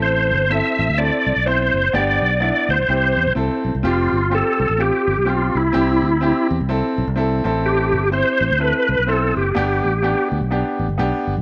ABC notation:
X:1
M:4/4
L:1/16
Q:"Swing" 1/4=126
K:C
V:1 name="Tonewheel organ"
c4 e4 d4 c4 | d4 d2 c6 z4 | F4 A4 G4 F2 E2- | E6 z8 z2 |
G4 c4 B4 A2 G2- | G6 z8 z2 |]
V:2 name="Upright piano"
[CEA]2 z2 [CEA]2 z2 [CEA]2 z2 [CEc]2 z2 | [B,DG]2 z2 [B,DE]2 z2 [CEG]2 z2 [CEA]2 z2 | [CFG]2 z2 [CFG]2 z2 [CFG]2 z2 [CFG]2 z2 | [CEG]2 z2 [CEG]2 z2 [CEA]2 z2 [CEA]2 [CEA]2- |
[CEA]2 z2 [CEc]2 z2 [CEA]2 z2 [CEc]2 z2 | [B,DG]2 z2 [B,DG]2 z2 [B,DG]2 z2 [B,DG]2 z2 |]
V:3 name="Fingered electric bass" clef=bass
A,,,2 G,,,3 z A,,, D,,2 z C,, B,,,3 ^F,,,2 | G,,,2 B,,,3 z D,, B,,, C,,2 E,, B,,, C,, z B,,, C,, | F,,,2 G,,,3 z C,, A,,,2 z G,,, B,,,3 C,,2 | C,,2 D,,3 z E,, C,,2 z B,,, C,,3 A,,,2- |
A,,,2 G,,,3 z A,,, D,,2 z C,, B,,,3 ^F,,,2 | G,,,2 A,,,3 z D,, B,,,2 z A,,, G,,, B,,, z G,,, B,,, |]